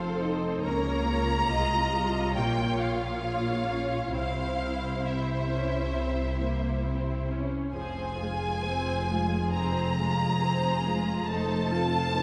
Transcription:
Already playing: F1 F2 C4 F4 A4 C5 F5
0.21 D#4
0.62 C#2 C#3 A#3 C#4 A#4 C#5 A#5
1.08 F4
1.50 C2 C3 G#3 F4 D#5
1.93 G3
2.34 A#1 A#2 A#3 F4 C#5 G5
2.80 F5
3.23 A#3 C#5
3.68 C#4
4.12 C2 C3 C4 E4 C5 F5
5.04 C4 E5
5.48 C#4
5.93 C4
6.38 A#3
6.83 C4
7.29 C#4
7.72 F1 F2 F3 C4 G#4 C5 G#5
8.17 G#3 F4 G#4
8.64 F3 C4 G#4 C5
9.09 G#3 F4 G#4
9.53 F3 C4 G#4 C5 A#5
9.97 G#3 F4 G#4
10.41 F3 C4 G#4 C5
10.83 G#3 F4 G#4
11.26 F1 F2 A3 D#4 A4 C5 A5
11.70 C4 F4 A4
12.12 A3 D#4 A4 C5

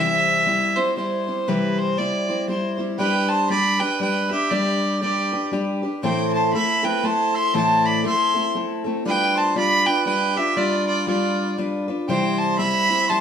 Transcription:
Already playing: C3 E3 G3 C4 E4 C5 E5
0.46 G3 C4 E4 C5
0.76 G3 C4 E4 C5
0.97 G3 C4 E4 C5
1.27 G3 C4 E4 C5
1.48 C3 E3 G3 C4 E4 B4 C5
1.78 C5
1.98 G3 C4 E4 C5 D5
2.29 G3 C4 E4 C5
2.48 G3 C4 E4 C5
2.78 G3 C4 E4 C5
2.98 G3 D4 G4 B4 G5
3.29 C5 A5
3.50 G3 D4 G4 B4 D5 B5
3.79 D4 G4 B4 G5
4.00 G3 D4 G4 B4 G5
4.29 D4 G4 B4 E5
4.50 G3 D4 G4 B4 D5
5.01 G3 D4 G4 B4 D5
5.32 D4 G4 B4
5.52 G3 D4 G4 B4
5.82 D4 G4 B4
6.03 A2 E3 A3 C4 E4 A4 C5 G5
6.33 C5 A5
6.53 A3 C4 E4 A4 E5 B5
6.83 A3 C4 E4 A4 B4 G5
7.03 A3 C4 E4 A4 C5 A5
7.35 E5 C6
7.54 A2 E3 A3 C4 E4 A4 C5 A5
7.86 D5 B5
8.04 A3 C4 E4 A4 E5 C6
8.34 A3 C4 E4 A4
8.55 A3 C4 E4 A4
8.84 A3 C4 E4 A4
9.05 G3 D4 F4 B4 G5
9.36 C5 A5
9.55 G3 D4 F4 B4 D5 B5
9.86 D4 F4 B4 G5
10.06 G3 D4 F4 B4 G5
10.35 D4 F4 G4 B4 E5
10.56 G3 D4 F4 B4 D5
10.87 F4 D5
11.07 G3 D4 F4 B4 D5
11.57 G3 D4 F4 B4
11.88 D4 F4 B4
12.08 C3 E3 G3 C4 E4 C5 G5
12.38 C5 A5
12.58 G3 C4 E4 C5 E5 B5
12.89 G3 C4 E4 C5
13.09 G3 C4 E4 C5 A5

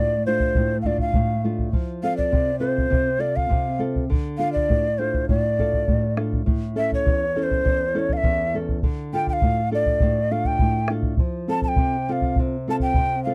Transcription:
Already playing: A2 A3 D4 F4 D5
0.26 A3 D4 F4 C5
0.40 bombo low
0.55 A2, bombo low
0.82 A3 F5, bombo low
0.86 D4 F4 D5
0.98 F5, bombo low
1.14 A2, bombo low
1.44 A3 D4 F4
1.59 bombo low
1.73 F3, bombo low
2.03 C4 F4 A4 F5
2.17 D5, bombo low
2.32 C3, bombo low
2.60 C4 F4 A4 C5
2.78 bombo low
2.90 C3, bombo low
3.18 C4 F4 A4 D5
3.36 F5, bombo low
3.49 C3, bombo low
3.79 C4 F4 A4
3.96 bombo low
4.10 D3, bombo low
4.38 D4 F4 A4 F5
4.53 D5, bombo low
4.69 A2, bombo low
4.99 D4 F4 A4 C5
5.14 bombo low
5.29 A2 D5, bombo low
5.58 D4 F4 A4, bombo low
5.74 bombo low
5.88 A2, bombo low
6.17 D4 F4 A4, bombo rim
6.33 bombo low
6.46 A2, bombo low
6.76 C#4 E4 A4 E5
6.92 C#5, bombo low
7.06 E2, bombo low
7.36 C#4 E4 A4 C#5
7.43 C5
7.51 bombo low
7.64 E2, bombo low
7.94 C#4 E4 A4
7.99 C#5
8.09 F5, bombo low
8.17 E5
8.23 E2, bombo low
8.54 C#4 E4 A4
8.69 bombo low
8.83 D3, bombo low
9.13 D4 F4 A4 G5
9.27 G5, bombo low
9.33 F5
9.42 A2, bombo low
9.71 D4 F4 A4 D5
9.86 bombo low
10.00 A2, bombo low
10.31 D4 F4 A4 F5
10.45 G5, bombo low
10.59 A2, bombo low
10.88 D4 F4 A4, bombo rim
11.03 bombo low
11.17 F3, bombo low
11.48 C4 F4 A4 A5
11.62 A5, bombo low
11.68 G5
11.76 C3, bombo low
12.09 C4 F4 A4 F5 G5
12.22 bombo low
12.36 C3, bombo low
12.68 C4 F4 A4 A5
12.80 G5, bombo low
12.94 C3, bombo low
13.24 C4 F4 A4 F5

